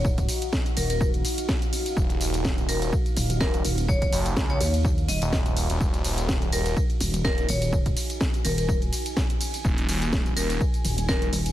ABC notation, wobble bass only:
X:1
M:4/4
L:1/8
Q:"Swing 16ths" 1/4=125
K:Ebm
V:1 name="Wobble bass" clef=bass
E,,, z2 E,,,2 z3 | z4 z E,,, z E,,,- | E,,, z2 E,,2 E,,, z2 | z4 z E,,, z E,,,- |
E,,, z2 E,,,2 z3 | z4 z E,,, z E,,, |]